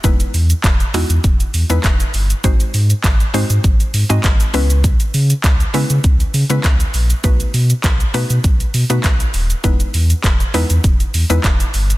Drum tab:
HH |xxoxxxoxxxoxxxox|xxoxxxoxxxoxxxox|xxoxxxoxxxoxxxox|xxoxxxoxxxoxxxox|
SH |xxxxxxxxxxxxxxxx|xxxxxxxxxxxxxxxx|xxxxxxxxxxxxxxxx|xxxxxxxxxxxxxxxx|
CP |----x-------x---|----x-------x---|----x-------x---|----x-------x---|
BD |o---o---o---o---|o---o---o---o---|o---o---o---o---|o---o---o---o---|

HH |xxoxxxoxxxoxxxox|
SH |xxxxxxxxxxxxxxxx|
CP |----x-------x---|
BD |o---o---o---o---|